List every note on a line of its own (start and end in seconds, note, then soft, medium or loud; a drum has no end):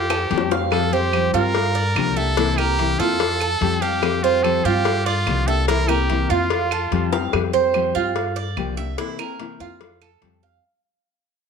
0.00 0.26 F2 medium
0.00 0.52 G4 loud
0.10 0.50 A4 medium
0.10 high bongo medium
0.10 claves medium
0.30 1.28 F2 medium
0.30 0.50 F3 medium
0.30 0.50 G3 medium
0.30 0.51 C4 medium
0.30 0.50 G4 medium
0.30 cowbell medium
0.38 low bongo medium
0.51 0.71 G3 soft
0.51 0.72 C4 soft
0.51 0.71 G4 soft
0.51 0.92 F5 medium
0.51 low bongo loud
0.71 0.92 F3 medium
0.71 0.92 G3 medium
0.71 0.91 C4 medium
0.71 0.90 G4 medium
0.71 0.94 A4 loud
0.71 cowbell loud
0.71 claves medium
0.92 1.12 G3 soft
0.92 1.13 C4 soft
0.92 1.12 G4 soft
0.92 1.33 G4 loud
0.92 1.33 C5 medium
1.13 1.33 F3 medium
1.13 1.33 G3 medium
1.13 1.34 C4 medium
1.13 1.32 G4 medium
1.13 cowbell medium
1.13 claves medium
1.33 1.92 G2 medium
1.33 1.55 G3 soft
1.33 1.55 C4 soft
1.33 1.74 F4 medium
1.33 1.54 G4 soft
1.33 2.18 A#4 loud
1.55 muted nylon-string guitar stroke medium
1.55 cowbell loud
1.75 2.15 D5 medium
1.96 2.93 C2 medium
1.96 2.16 D3 medium
1.96 2.16 F3 medium
1.96 2.17 A#3 medium
1.96 2.17 D4 medium
1.96 2.16 G4 medium
1.96 cowbell medium
1.96 claves medium
2.16 2.37 A#3 soft
2.16 2.37 D4 soft
2.16 2.37 G4 soft
2.16 2.59 A4 loud
2.16 2.37 E5 medium
2.37 2.57 C3 medium
2.37 2.58 E3 medium
2.37 2.58 A#3 medium
2.37 2.58 C4 medium
2.37 2.58 E4 medium
2.37 2.56 E4 medium
2.37 cowbell loud
2.57 2.78 A#3 soft
2.57 2.78 C4 soft
2.57 2.78 E4 medium
2.57 3.01 G4 loud
2.57 2.98 A#4 medium
2.57 claves medium
2.78 2.98 C3 medium
2.78 2.99 E3 medium
2.78 2.99 A#3 medium
2.78 2.98 C4 medium
2.78 2.97 E4 medium
2.78 cowbell medium
2.98 3.57 F2 medium
2.98 3.19 A#3 soft
2.98 3.19 C4 soft
2.98 3.19 E4 soft
2.98 3.40 F4 medium
2.98 3.83 A4 loud
3.19 muted nylon-string guitar stroke medium
3.19 cowbell loud
3.40 3.81 A4 medium
3.40 claves medium
3.61 4.59 F2 medium
3.61 3.81 F3 medium
3.61 3.81 G3 medium
3.61 3.81 C4 medium
3.61 3.80 G4 medium
3.61 cowbell medium
3.81 4.01 G3 soft
3.81 4.02 C4 soft
3.81 4.01 G4 medium
3.81 4.24 G4 medium
3.81 4.22 F5 medium
4.01 4.22 F3 medium
4.01 4.22 G3 medium
4.01 4.23 C4 medium
4.01 4.21 G4 medium
4.01 cowbell loud
4.01 claves medium
4.23 4.43 G3 soft
4.23 4.43 C4 medium
4.23 4.45 F4 medium
4.23 4.43 G4 medium
4.23 4.64 C5 medium
4.43 4.64 F3 medium
4.43 4.64 G3 medium
4.43 4.64 C4 medium
4.43 4.63 G4 medium
4.43 4.66 A4 medium
4.43 cowbell medium
4.43 claves medium
4.64 5.23 G2 medium
4.64 4.85 G3 soft
4.64 4.85 C4 soft
4.64 5.05 F4 medium
4.64 4.84 G4 soft
4.64 5.07 G4 loud
4.85 muted nylon-string guitar stroke medium
4.85 cowbell loud
5.06 5.49 F4 medium
5.06 5.46 D5 medium
5.26 6.24 C2 loud
5.26 5.46 D3 medium
5.26 5.47 F3 medium
5.26 5.47 A#3 medium
5.26 5.47 D4 medium
5.26 5.46 G4 medium
5.26 cowbell medium
5.26 claves medium
5.47 5.68 A#3 soft
5.47 5.68 D4 soft
5.47 5.67 G4 soft
5.47 5.67 A4 loud
5.47 5.68 E5 medium
5.68 5.88 C3 medium
5.68 5.88 E3 medium
5.68 5.88 A#3 medium
5.68 5.88 C4 medium
5.68 5.88 E4 medium
5.68 5.87 E4 medium
5.68 5.90 A#4 loud
5.68 cowbell loud
5.88 6.09 A#3 soft
5.88 6.09 C4 soft
5.88 6.08 E4 soft
5.88 6.31 G4 medium
5.88 6.29 A#4 medium
5.88 claves medium
6.09 6.29 C3 medium
6.09 6.29 E3 medium
6.09 6.30 A#3 medium
6.09 6.29 C4 medium
6.09 6.28 E4 medium
6.09 cowbell medium
6.29 6.88 F2 medium
6.29 6.50 A#3 soft
6.29 6.50 C4 soft
6.29 6.50 E4 soft
6.29 7.13 F4 medium
6.29 6.70 F4 medium
6.50 muted nylon-string guitar stroke medium
6.50 cowbell loud
6.71 7.12 A4 medium
6.71 claves medium
6.91 7.28 F2 medium
6.91 7.11 F3 medium
6.91 7.12 G3 medium
6.91 7.12 C4 medium
6.91 7.11 G4 medium
6.91 cowbell medium
7.12 7.32 G3 soft
7.12 7.33 C4 soft
7.12 7.32 G4 medium
7.12 7.33 F5 medium
7.12 high bongo loud
7.32 7.91 F2 medium
7.32 7.53 F3 medium
7.32 7.53 G3 medium
7.32 7.53 C4 medium
7.32 7.52 G4 medium
7.32 cowbell loud
7.32 claves medium
7.53 7.74 G3 soft
7.53 7.74 C4 soft
7.53 7.73 G4 medium
7.53 7.94 C5 medium
7.74 7.94 F3 medium
7.74 7.94 G3 medium
7.74 7.94 C4 medium
7.74 7.93 G4 medium
7.74 cowbell medium
7.74 claves medium
7.94 8.53 G2 medium
7.94 8.15 G3 soft
7.94 8.15 C4 soft
7.94 8.35 F4 medium
7.94 8.14 G4 soft
8.15 muted nylon-string guitar stroke medium
8.15 cowbell loud
8.36 8.76 D5 medium
8.56 8.94 C2 loud
8.56 8.76 D3 medium
8.56 8.77 F3 medium
8.56 8.77 A#3 medium
8.56 8.77 D4 medium
8.56 8.76 G4 medium
8.56 cowbell medium
8.56 claves medium
8.77 8.97 A#3 soft
8.77 8.98 D4 soft
8.77 8.97 G4 medium
8.77 8.97 E5 medium
8.98 9.18 C3 medium
8.98 9.18 E3 medium
8.98 9.18 A#3 medium
8.98 9.19 C4 medium
8.98 9.18 E4 medium
8.98 9.17 E4 medium
8.98 cowbell loud
9.19 9.39 A#3 soft
9.19 9.39 C4 soft
9.19 9.39 E4 soft
9.19 9.59 A#4 medium
9.19 claves medium
9.39 9.59 C3 medium
9.39 9.60 E3 medium
9.39 9.60 A#3 medium
9.39 9.60 C4 medium
9.39 9.59 E4 medium
9.39 cowbell medium
9.60 10.18 F2 medium
9.60 9.81 A#3 soft
9.60 9.80 C4 soft
9.60 9.80 E4 medium
9.60 10.00 F4 medium
9.81 muted nylon-string guitar stroke medium
9.81 cowbell loud
10.02 10.42 A4 medium
10.02 claves medium
10.21 10.58 F2 loud
10.21 10.42 F3 medium
10.21 10.42 G3 medium
10.21 10.42 C4 medium
10.21 10.41 G4 medium
10.21 cowbell medium
10.43 10.63 G3 soft
10.43 10.63 C4 medium
10.43 10.62 G4 medium
10.43 10.63 F5 medium